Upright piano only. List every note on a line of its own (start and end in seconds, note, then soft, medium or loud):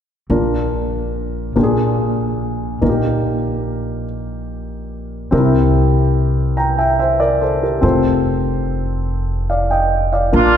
0.30 1.52 A#2 soft
0.30 1.54 A#3 soft
0.30 1.55 D4 soft
0.30 1.55 F4 soft
0.30 1.56 A#4 soft
1.56 2.78 A#2 soft
1.56 2.80 A#3 soft
1.56 2.82 D4 soft
1.56 2.81 F4 soft
1.56 1.63 G4 soft
1.63 2.85 G#4 medium
2.81 4.03 A#2 soft
2.81 5.29 A#3 soft
2.81 5.29 D#4 soft
2.81 2.89 F4 soft
2.81 5.30 A#4 soft
2.89 5.31 G4 soft
5.31 6.54 C3 soft
5.31 7.79 C4 soft
5.31 5.39 D4 soft
5.31 6.55 G4 soft
5.31 6.56 A#4 medium
5.39 7.82 E4 soft
6.57 6.77 G5 soft
6.57 6.77 A#5 soft
6.78 6.98 E5 soft
6.78 6.99 G5 soft
6.99 7.20 C5 soft
6.99 7.19 E5 soft
7.20 7.40 A#4 soft
7.20 7.40 D5 medium
7.41 7.62 A4 soft
7.41 7.61 C5 soft
7.63 8.03 G4 soft
7.63 8.02 A#4 soft
7.81 10.29 C4 soft
7.81 10.29 F4 soft
7.81 10.30 A4 soft
7.81 10.30 C5 medium
9.50 9.70 D5 soft
9.50 9.70 F5 soft
9.71 10.11 D#5 soft
9.71 10.11 G5 soft
10.13 10.53 D5 soft
10.13 10.53 F5 soft
10.33 10.57 A#2 soft
10.33 10.57 A#3 soft
10.33 10.57 D4 soft
10.33 10.57 F4 soft
10.33 10.57 A#4 medium